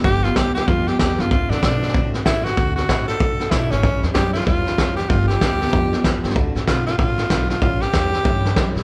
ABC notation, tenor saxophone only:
X:1
M:4/4
L:1/8
Q:"Swing" 1/4=190
K:G
V:1 name="Tenor saxophone"
G =F G G F G G F | =F D4 z E ^F- | F F2 A3 E ^C- | ^C z G =F F3 G |
=F G6 z | z2 =F F F3 F | =F G6 z |]